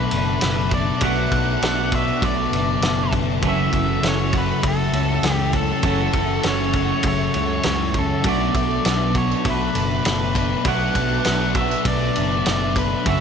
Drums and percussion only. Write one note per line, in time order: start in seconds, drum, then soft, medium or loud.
0.11 ride medium
0.41 snare loud
0.41 ride medium
0.71 kick medium
0.71 ride medium
1.01 kick loud
1.01 ride medium
1.32 kick medium
1.32 ride medium
1.62 snare loud
1.62 ride medium
1.92 kick medium
1.92 ride medium
2.22 kick loud
2.22 ride medium
2.53 ride medium
2.82 snare loud
2.82 ride medium
3.13 kick medium
3.13 ride medium
3.42 kick loud
3.42 ride medium
3.73 kick medium
3.73 ride medium
4.03 snare loud
4.03 ride medium
4.33 kick medium
4.33 ride medium
4.63 kick loud
4.63 ride medium
4.93 ride medium
5.23 snare loud
5.23 ride loud
5.53 kick medium
5.53 ride medium
5.83 kick loud
5.83 ride medium
6.13 kick medium
6.13 ride medium
6.43 snare loud
6.43 ride medium
6.73 kick medium
6.73 ride medium
7.03 kick loud
7.03 ride medium
7.34 ride medium
7.63 snare loud
7.63 ride medium
7.94 kick medium
7.94 ride medium
8.24 kick loud
8.24 ride medium
8.24 tambourine soft
8.41 tambourine soft
8.54 kick medium
8.54 ride medium
8.54 tambourine medium
8.71 tambourine soft
8.85 snare loud
8.85 ride medium
8.85 tambourine medium
9.01 tambourine soft
9.15 kick medium
9.15 ride medium
9.15 tambourine soft
9.31 tambourine medium
9.45 kick loud
9.45 ride medium
9.61 tambourine soft
9.75 ride medium
9.75 tambourine medium
9.91 tambourine soft
10.05 snare loud
10.05 ride medium
10.05 tambourine medium
10.35 kick medium
10.35 ride medium
10.35 tambourine medium
10.65 kick loud
10.65 ride medium
10.65 tambourine soft
10.81 tambourine soft
10.95 kick medium
10.95 ride medium
10.95 tambourine medium
11.11 tambourine soft
11.25 snare loud
11.25 ride loud
11.25 tambourine medium
11.41 tambourine soft
11.55 kick medium
11.55 ride medium
11.55 tambourine soft
11.71 tambourine medium
11.85 kick loud
11.85 ride loud
12.02 tambourine soft
12.16 ride medium
12.16 tambourine medium
12.31 tambourine soft
12.46 snare loud
12.46 ride medium
12.46 tambourine medium
12.76 kick medium
12.76 ride medium
12.76 tambourine medium
13.06 kick loud
13.06 ride medium
13.06 tambourine soft